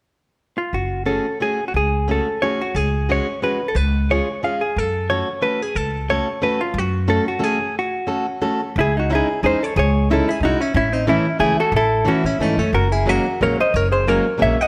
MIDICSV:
0, 0, Header, 1, 4, 480
1, 0, Start_track
1, 0, Key_signature, 3, "minor"
1, 0, Tempo, 334635
1, 1057, Time_signature, 3, 2, 24, 8
1, 12567, Key_signature, 4, "minor"
1, 13531, Tempo, 331492
1, 21120, End_track
2, 0, Start_track
2, 0, Title_t, "Hollow-body jazz guitar"
2, 0, Program_c, 0, 26
2, 829, Note_on_c, 0, 65, 60
2, 1064, Note_off_c, 0, 65, 0
2, 1065, Note_on_c, 0, 66, 65
2, 1519, Note_off_c, 0, 66, 0
2, 1525, Note_on_c, 0, 69, 64
2, 2035, Note_off_c, 0, 69, 0
2, 2040, Note_on_c, 0, 68, 74
2, 2404, Note_off_c, 0, 68, 0
2, 2410, Note_on_c, 0, 66, 60
2, 2524, Note_off_c, 0, 66, 0
2, 2532, Note_on_c, 0, 68, 77
2, 2974, Note_off_c, 0, 68, 0
2, 3029, Note_on_c, 0, 69, 70
2, 3472, Note_on_c, 0, 73, 93
2, 3508, Note_off_c, 0, 69, 0
2, 3738, Note_off_c, 0, 73, 0
2, 3750, Note_on_c, 0, 66, 74
2, 3956, Note_off_c, 0, 66, 0
2, 3956, Note_on_c, 0, 68, 92
2, 4444, Note_off_c, 0, 68, 0
2, 4469, Note_on_c, 0, 73, 78
2, 4922, Note_off_c, 0, 73, 0
2, 4928, Note_on_c, 0, 71, 81
2, 5283, Note_on_c, 0, 69, 68
2, 5291, Note_off_c, 0, 71, 0
2, 5394, Note_off_c, 0, 69, 0
2, 5394, Note_on_c, 0, 71, 89
2, 5881, Note_off_c, 0, 71, 0
2, 5897, Note_on_c, 0, 73, 89
2, 6368, Note_off_c, 0, 73, 0
2, 6374, Note_on_c, 0, 77, 82
2, 6615, Note_on_c, 0, 68, 61
2, 6625, Note_off_c, 0, 77, 0
2, 6862, Note_off_c, 0, 68, 0
2, 6862, Note_on_c, 0, 69, 79
2, 7312, Note_on_c, 0, 73, 79
2, 7338, Note_off_c, 0, 69, 0
2, 7781, Note_on_c, 0, 71, 77
2, 7802, Note_off_c, 0, 73, 0
2, 8065, Note_off_c, 0, 71, 0
2, 8065, Note_on_c, 0, 68, 77
2, 8262, Note_off_c, 0, 68, 0
2, 8262, Note_on_c, 0, 69, 87
2, 8750, Note_off_c, 0, 69, 0
2, 8751, Note_on_c, 0, 73, 84
2, 9224, Note_on_c, 0, 71, 80
2, 9232, Note_off_c, 0, 73, 0
2, 9477, Note_off_c, 0, 71, 0
2, 9478, Note_on_c, 0, 65, 71
2, 9731, Note_off_c, 0, 65, 0
2, 9731, Note_on_c, 0, 66, 90
2, 10181, Note_on_c, 0, 69, 80
2, 10191, Note_off_c, 0, 66, 0
2, 10427, Note_off_c, 0, 69, 0
2, 10443, Note_on_c, 0, 66, 74
2, 10665, Note_off_c, 0, 66, 0
2, 10665, Note_on_c, 0, 68, 81
2, 11136, Note_off_c, 0, 68, 0
2, 11171, Note_on_c, 0, 66, 72
2, 12053, Note_off_c, 0, 66, 0
2, 12605, Note_on_c, 0, 64, 73
2, 12629, Note_on_c, 0, 68, 95
2, 12827, Note_off_c, 0, 64, 0
2, 12863, Note_off_c, 0, 68, 0
2, 12867, Note_on_c, 0, 63, 48
2, 12900, Note_on_c, 0, 66, 61
2, 13056, Note_off_c, 0, 63, 0
2, 13074, Note_off_c, 0, 66, 0
2, 13090, Note_on_c, 0, 64, 59
2, 13124, Note_on_c, 0, 68, 74
2, 13516, Note_off_c, 0, 64, 0
2, 13523, Note_off_c, 0, 68, 0
2, 13541, Note_on_c, 0, 68, 63
2, 13569, Note_on_c, 0, 72, 85
2, 13773, Note_off_c, 0, 68, 0
2, 13813, Note_on_c, 0, 69, 54
2, 13828, Note_off_c, 0, 72, 0
2, 13828, Note_on_c, 0, 73, 81
2, 14008, Note_off_c, 0, 69, 0
2, 14023, Note_on_c, 0, 68, 64
2, 14031, Note_off_c, 0, 73, 0
2, 14049, Note_on_c, 0, 73, 92
2, 14462, Note_off_c, 0, 68, 0
2, 14513, Note_on_c, 0, 64, 68
2, 14521, Note_off_c, 0, 73, 0
2, 14540, Note_on_c, 0, 69, 71
2, 14738, Note_off_c, 0, 64, 0
2, 14768, Note_on_c, 0, 64, 64
2, 14791, Note_off_c, 0, 69, 0
2, 14791, Note_on_c, 0, 68, 91
2, 14963, Note_off_c, 0, 64, 0
2, 14975, Note_on_c, 0, 63, 71
2, 14995, Note_off_c, 0, 68, 0
2, 15002, Note_on_c, 0, 66, 90
2, 15207, Note_off_c, 0, 63, 0
2, 15228, Note_on_c, 0, 61, 57
2, 15240, Note_off_c, 0, 66, 0
2, 15240, Note_on_c, 0, 64, 75
2, 15430, Note_off_c, 0, 61, 0
2, 15445, Note_off_c, 0, 64, 0
2, 15450, Note_on_c, 0, 61, 62
2, 15462, Note_on_c, 0, 64, 97
2, 15681, Note_off_c, 0, 61, 0
2, 15691, Note_on_c, 0, 60, 46
2, 15700, Note_off_c, 0, 64, 0
2, 15700, Note_on_c, 0, 63, 65
2, 15899, Note_off_c, 0, 60, 0
2, 15916, Note_on_c, 0, 61, 59
2, 15925, Note_off_c, 0, 63, 0
2, 15933, Note_on_c, 0, 64, 95
2, 16355, Note_off_c, 0, 61, 0
2, 16369, Note_off_c, 0, 64, 0
2, 16378, Note_on_c, 0, 68, 91
2, 16387, Note_on_c, 0, 64, 73
2, 16621, Note_off_c, 0, 64, 0
2, 16642, Note_off_c, 0, 68, 0
2, 16666, Note_on_c, 0, 66, 66
2, 16671, Note_on_c, 0, 69, 82
2, 16860, Note_off_c, 0, 66, 0
2, 16882, Note_off_c, 0, 69, 0
2, 16904, Note_on_c, 0, 64, 76
2, 16908, Note_on_c, 0, 69, 104
2, 17332, Note_off_c, 0, 64, 0
2, 17362, Note_on_c, 0, 66, 90
2, 17370, Note_on_c, 0, 61, 68
2, 17377, Note_off_c, 0, 69, 0
2, 17598, Note_off_c, 0, 61, 0
2, 17617, Note_on_c, 0, 61, 61
2, 17625, Note_off_c, 0, 66, 0
2, 17625, Note_on_c, 0, 64, 87
2, 17823, Note_off_c, 0, 61, 0
2, 17853, Note_on_c, 0, 57, 63
2, 17862, Note_off_c, 0, 64, 0
2, 17862, Note_on_c, 0, 63, 78
2, 18082, Note_off_c, 0, 57, 0
2, 18099, Note_on_c, 0, 57, 56
2, 18101, Note_off_c, 0, 63, 0
2, 18101, Note_on_c, 0, 61, 76
2, 18309, Note_off_c, 0, 57, 0
2, 18319, Note_off_c, 0, 61, 0
2, 18325, Note_on_c, 0, 66, 74
2, 18328, Note_on_c, 0, 70, 81
2, 18566, Note_off_c, 0, 66, 0
2, 18577, Note_on_c, 0, 64, 51
2, 18582, Note_off_c, 0, 70, 0
2, 18582, Note_on_c, 0, 68, 69
2, 18791, Note_off_c, 0, 64, 0
2, 18827, Note_on_c, 0, 70, 83
2, 18828, Note_off_c, 0, 68, 0
2, 18830, Note_on_c, 0, 66, 67
2, 19268, Note_off_c, 0, 66, 0
2, 19296, Note_off_c, 0, 70, 0
2, 19313, Note_on_c, 0, 70, 74
2, 19320, Note_on_c, 0, 73, 97
2, 19539, Note_off_c, 0, 70, 0
2, 19567, Note_off_c, 0, 73, 0
2, 19570, Note_on_c, 0, 72, 78
2, 19575, Note_on_c, 0, 75, 91
2, 19766, Note_off_c, 0, 72, 0
2, 19791, Note_off_c, 0, 75, 0
2, 19791, Note_on_c, 0, 73, 113
2, 19803, Note_on_c, 0, 70, 76
2, 20018, Note_off_c, 0, 70, 0
2, 20024, Note_on_c, 0, 68, 53
2, 20028, Note_off_c, 0, 73, 0
2, 20033, Note_on_c, 0, 72, 79
2, 20233, Note_off_c, 0, 68, 0
2, 20264, Note_off_c, 0, 72, 0
2, 20264, Note_on_c, 0, 73, 86
2, 20272, Note_on_c, 0, 70, 81
2, 20708, Note_off_c, 0, 70, 0
2, 20747, Note_off_c, 0, 73, 0
2, 20754, Note_on_c, 0, 76, 100
2, 20764, Note_on_c, 0, 73, 75
2, 20985, Note_off_c, 0, 73, 0
2, 21026, Note_off_c, 0, 76, 0
2, 21026, Note_on_c, 0, 78, 98
2, 21045, Note_on_c, 0, 75, 83
2, 21120, Note_off_c, 0, 75, 0
2, 21120, Note_off_c, 0, 78, 0
2, 21120, End_track
3, 0, Start_track
3, 0, Title_t, "Steel-string acoustic guitar"
3, 0, Program_c, 1, 25
3, 1515, Note_on_c, 1, 57, 53
3, 1522, Note_on_c, 1, 61, 48
3, 1533, Note_on_c, 1, 66, 52
3, 1540, Note_on_c, 1, 68, 57
3, 1793, Note_off_c, 1, 57, 0
3, 1797, Note_off_c, 1, 61, 0
3, 1799, Note_off_c, 1, 66, 0
3, 1805, Note_off_c, 1, 68, 0
3, 2013, Note_on_c, 1, 57, 48
3, 2019, Note_on_c, 1, 66, 43
3, 2026, Note_on_c, 1, 61, 48
3, 2034, Note_on_c, 1, 68, 62
3, 2283, Note_off_c, 1, 57, 0
3, 2285, Note_off_c, 1, 66, 0
3, 2289, Note_off_c, 1, 61, 0
3, 2293, Note_off_c, 1, 68, 0
3, 2981, Note_on_c, 1, 57, 60
3, 2988, Note_on_c, 1, 66, 55
3, 2995, Note_on_c, 1, 61, 49
3, 2998, Note_on_c, 1, 68, 59
3, 3247, Note_off_c, 1, 57, 0
3, 3250, Note_off_c, 1, 66, 0
3, 3254, Note_off_c, 1, 68, 0
3, 3255, Note_off_c, 1, 61, 0
3, 3482, Note_on_c, 1, 57, 55
3, 3484, Note_on_c, 1, 61, 46
3, 3486, Note_on_c, 1, 66, 53
3, 3491, Note_on_c, 1, 68, 56
3, 3735, Note_off_c, 1, 61, 0
3, 3735, Note_off_c, 1, 66, 0
3, 3736, Note_off_c, 1, 57, 0
3, 3739, Note_off_c, 1, 68, 0
3, 4432, Note_on_c, 1, 56, 57
3, 4438, Note_on_c, 1, 66, 57
3, 4444, Note_on_c, 1, 68, 71
3, 4447, Note_on_c, 1, 61, 51
3, 4684, Note_off_c, 1, 56, 0
3, 4685, Note_off_c, 1, 66, 0
3, 4686, Note_off_c, 1, 68, 0
3, 4690, Note_off_c, 1, 61, 0
3, 4910, Note_on_c, 1, 56, 56
3, 4917, Note_on_c, 1, 61, 45
3, 4924, Note_on_c, 1, 68, 55
3, 4925, Note_on_c, 1, 66, 56
3, 5162, Note_off_c, 1, 56, 0
3, 5162, Note_off_c, 1, 61, 0
3, 5163, Note_off_c, 1, 66, 0
3, 5167, Note_off_c, 1, 68, 0
3, 5885, Note_on_c, 1, 56, 55
3, 5891, Note_on_c, 1, 61, 47
3, 5897, Note_on_c, 1, 65, 49
3, 5905, Note_on_c, 1, 68, 60
3, 6128, Note_off_c, 1, 56, 0
3, 6130, Note_off_c, 1, 61, 0
3, 6135, Note_off_c, 1, 65, 0
3, 6136, Note_off_c, 1, 68, 0
3, 6352, Note_on_c, 1, 56, 57
3, 6355, Note_on_c, 1, 61, 49
3, 6364, Note_on_c, 1, 68, 57
3, 6368, Note_on_c, 1, 65, 43
3, 6607, Note_off_c, 1, 61, 0
3, 6609, Note_off_c, 1, 56, 0
3, 6610, Note_off_c, 1, 65, 0
3, 6613, Note_off_c, 1, 68, 0
3, 7310, Note_on_c, 1, 57, 56
3, 7317, Note_on_c, 1, 61, 49
3, 7317, Note_on_c, 1, 69, 59
3, 7327, Note_on_c, 1, 66, 47
3, 7563, Note_off_c, 1, 57, 0
3, 7566, Note_off_c, 1, 69, 0
3, 7567, Note_off_c, 1, 61, 0
3, 7572, Note_off_c, 1, 66, 0
3, 7769, Note_on_c, 1, 61, 47
3, 7771, Note_on_c, 1, 57, 47
3, 7776, Note_on_c, 1, 66, 49
3, 7779, Note_on_c, 1, 69, 62
3, 8032, Note_off_c, 1, 61, 0
3, 8033, Note_off_c, 1, 66, 0
3, 8034, Note_off_c, 1, 57, 0
3, 8037, Note_off_c, 1, 69, 0
3, 8740, Note_on_c, 1, 57, 57
3, 8746, Note_on_c, 1, 61, 53
3, 8747, Note_on_c, 1, 66, 55
3, 8762, Note_on_c, 1, 69, 64
3, 8991, Note_off_c, 1, 57, 0
3, 8993, Note_off_c, 1, 66, 0
3, 8994, Note_off_c, 1, 61, 0
3, 9002, Note_off_c, 1, 69, 0
3, 9205, Note_on_c, 1, 57, 57
3, 9211, Note_on_c, 1, 61, 52
3, 9222, Note_on_c, 1, 66, 52
3, 9224, Note_on_c, 1, 69, 65
3, 9460, Note_off_c, 1, 57, 0
3, 9465, Note_off_c, 1, 61, 0
3, 9466, Note_off_c, 1, 66, 0
3, 9470, Note_off_c, 1, 69, 0
3, 10154, Note_on_c, 1, 57, 69
3, 10156, Note_on_c, 1, 61, 59
3, 10158, Note_on_c, 1, 69, 68
3, 10159, Note_on_c, 1, 66, 63
3, 10406, Note_off_c, 1, 69, 0
3, 10407, Note_off_c, 1, 57, 0
3, 10407, Note_off_c, 1, 61, 0
3, 10408, Note_off_c, 1, 66, 0
3, 10604, Note_on_c, 1, 57, 65
3, 10612, Note_on_c, 1, 61, 49
3, 10612, Note_on_c, 1, 66, 49
3, 10613, Note_on_c, 1, 69, 64
3, 10870, Note_off_c, 1, 57, 0
3, 10870, Note_off_c, 1, 66, 0
3, 10872, Note_off_c, 1, 61, 0
3, 10873, Note_off_c, 1, 69, 0
3, 11573, Note_on_c, 1, 57, 50
3, 11575, Note_on_c, 1, 61, 54
3, 11583, Note_on_c, 1, 66, 61
3, 11590, Note_on_c, 1, 69, 62
3, 11840, Note_off_c, 1, 61, 0
3, 11843, Note_off_c, 1, 57, 0
3, 11843, Note_off_c, 1, 66, 0
3, 11843, Note_off_c, 1, 69, 0
3, 12071, Note_on_c, 1, 61, 62
3, 12073, Note_on_c, 1, 57, 59
3, 12074, Note_on_c, 1, 66, 62
3, 12079, Note_on_c, 1, 69, 78
3, 12337, Note_off_c, 1, 61, 0
3, 12337, Note_off_c, 1, 66, 0
3, 12339, Note_off_c, 1, 57, 0
3, 12341, Note_off_c, 1, 69, 0
3, 13047, Note_on_c, 1, 56, 67
3, 13054, Note_on_c, 1, 61, 54
3, 13060, Note_on_c, 1, 64, 65
3, 13068, Note_on_c, 1, 63, 55
3, 13304, Note_off_c, 1, 56, 0
3, 13308, Note_off_c, 1, 61, 0
3, 13308, Note_off_c, 1, 64, 0
3, 13314, Note_off_c, 1, 63, 0
3, 13529, Note_on_c, 1, 56, 61
3, 13535, Note_on_c, 1, 61, 61
3, 13537, Note_on_c, 1, 63, 45
3, 13546, Note_on_c, 1, 64, 59
3, 13785, Note_off_c, 1, 61, 0
3, 13787, Note_off_c, 1, 56, 0
3, 13789, Note_off_c, 1, 63, 0
3, 13793, Note_off_c, 1, 64, 0
3, 14503, Note_on_c, 1, 56, 58
3, 14508, Note_on_c, 1, 63, 59
3, 14512, Note_on_c, 1, 61, 60
3, 14512, Note_on_c, 1, 64, 65
3, 14750, Note_off_c, 1, 56, 0
3, 14751, Note_off_c, 1, 63, 0
3, 14754, Note_off_c, 1, 64, 0
3, 14756, Note_off_c, 1, 61, 0
3, 14986, Note_on_c, 1, 56, 54
3, 14988, Note_on_c, 1, 61, 56
3, 14999, Note_on_c, 1, 63, 57
3, 15000, Note_on_c, 1, 64, 67
3, 15230, Note_off_c, 1, 56, 0
3, 15230, Note_off_c, 1, 61, 0
3, 15236, Note_off_c, 1, 64, 0
3, 15237, Note_off_c, 1, 63, 0
3, 15902, Note_on_c, 1, 52, 75
3, 15909, Note_on_c, 1, 61, 63
3, 15916, Note_on_c, 1, 57, 60
3, 15929, Note_on_c, 1, 64, 68
3, 16162, Note_off_c, 1, 52, 0
3, 16166, Note_off_c, 1, 61, 0
3, 16169, Note_off_c, 1, 57, 0
3, 16175, Note_off_c, 1, 64, 0
3, 16365, Note_on_c, 1, 52, 63
3, 16374, Note_on_c, 1, 57, 58
3, 16381, Note_on_c, 1, 61, 48
3, 16382, Note_on_c, 1, 64, 72
3, 16628, Note_off_c, 1, 52, 0
3, 16631, Note_off_c, 1, 57, 0
3, 16634, Note_off_c, 1, 64, 0
3, 16637, Note_off_c, 1, 61, 0
3, 17316, Note_on_c, 1, 52, 65
3, 17322, Note_on_c, 1, 57, 58
3, 17327, Note_on_c, 1, 61, 53
3, 17336, Note_on_c, 1, 64, 70
3, 17590, Note_off_c, 1, 52, 0
3, 17590, Note_off_c, 1, 61, 0
3, 17591, Note_off_c, 1, 57, 0
3, 17599, Note_off_c, 1, 64, 0
3, 17830, Note_on_c, 1, 57, 53
3, 17833, Note_on_c, 1, 52, 51
3, 17841, Note_on_c, 1, 61, 52
3, 17847, Note_on_c, 1, 64, 61
3, 18092, Note_off_c, 1, 57, 0
3, 18094, Note_off_c, 1, 52, 0
3, 18099, Note_off_c, 1, 64, 0
3, 18100, Note_off_c, 1, 61, 0
3, 18781, Note_on_c, 1, 56, 52
3, 18788, Note_on_c, 1, 54, 62
3, 18798, Note_on_c, 1, 58, 55
3, 18804, Note_on_c, 1, 61, 61
3, 19052, Note_off_c, 1, 56, 0
3, 19056, Note_off_c, 1, 54, 0
3, 19061, Note_off_c, 1, 58, 0
3, 19062, Note_off_c, 1, 61, 0
3, 19289, Note_on_c, 1, 54, 54
3, 19291, Note_on_c, 1, 56, 49
3, 19306, Note_on_c, 1, 58, 61
3, 19307, Note_on_c, 1, 61, 69
3, 19545, Note_off_c, 1, 54, 0
3, 19545, Note_off_c, 1, 56, 0
3, 19552, Note_off_c, 1, 61, 0
3, 19553, Note_off_c, 1, 58, 0
3, 20252, Note_on_c, 1, 58, 58
3, 20258, Note_on_c, 1, 54, 71
3, 20262, Note_on_c, 1, 56, 57
3, 20265, Note_on_c, 1, 61, 72
3, 20507, Note_off_c, 1, 58, 0
3, 20511, Note_off_c, 1, 54, 0
3, 20511, Note_off_c, 1, 56, 0
3, 20511, Note_off_c, 1, 61, 0
3, 20689, Note_on_c, 1, 54, 58
3, 20704, Note_on_c, 1, 56, 53
3, 20712, Note_on_c, 1, 58, 65
3, 20713, Note_on_c, 1, 61, 65
3, 20964, Note_off_c, 1, 54, 0
3, 20972, Note_off_c, 1, 56, 0
3, 20973, Note_off_c, 1, 58, 0
3, 20976, Note_off_c, 1, 61, 0
3, 21120, End_track
4, 0, Start_track
4, 0, Title_t, "Upright bass"
4, 0, Program_c, 2, 32
4, 1045, Note_on_c, 2, 30, 73
4, 1685, Note_off_c, 2, 30, 0
4, 2497, Note_on_c, 2, 37, 83
4, 3129, Note_off_c, 2, 37, 0
4, 3939, Note_on_c, 2, 37, 93
4, 4559, Note_off_c, 2, 37, 0
4, 5375, Note_on_c, 2, 37, 90
4, 6002, Note_off_c, 2, 37, 0
4, 6833, Note_on_c, 2, 42, 80
4, 7454, Note_off_c, 2, 42, 0
4, 8252, Note_on_c, 2, 37, 82
4, 8871, Note_off_c, 2, 37, 0
4, 9664, Note_on_c, 2, 42, 98
4, 10284, Note_off_c, 2, 42, 0
4, 12562, Note_on_c, 2, 37, 99
4, 13188, Note_off_c, 2, 37, 0
4, 13525, Note_on_c, 2, 40, 82
4, 13692, Note_off_c, 2, 40, 0
4, 14005, Note_on_c, 2, 37, 102
4, 14628, Note_off_c, 2, 37, 0
4, 14935, Note_on_c, 2, 36, 71
4, 15110, Note_off_c, 2, 36, 0
4, 15428, Note_on_c, 2, 33, 99
4, 16048, Note_off_c, 2, 33, 0
4, 16370, Note_on_c, 2, 37, 79
4, 16539, Note_off_c, 2, 37, 0
4, 16840, Note_on_c, 2, 33, 92
4, 17328, Note_off_c, 2, 33, 0
4, 17589, Note_on_c, 2, 45, 69
4, 17800, Note_off_c, 2, 45, 0
4, 17810, Note_on_c, 2, 44, 67
4, 18055, Note_off_c, 2, 44, 0
4, 18072, Note_on_c, 2, 42, 61
4, 18287, Note_off_c, 2, 42, 0
4, 18301, Note_on_c, 2, 30, 89
4, 18937, Note_off_c, 2, 30, 0
4, 19285, Note_on_c, 2, 34, 75
4, 19452, Note_off_c, 2, 34, 0
4, 19766, Note_on_c, 2, 30, 100
4, 20391, Note_off_c, 2, 30, 0
4, 20747, Note_on_c, 2, 34, 84
4, 20907, Note_off_c, 2, 34, 0
4, 21120, End_track
0, 0, End_of_file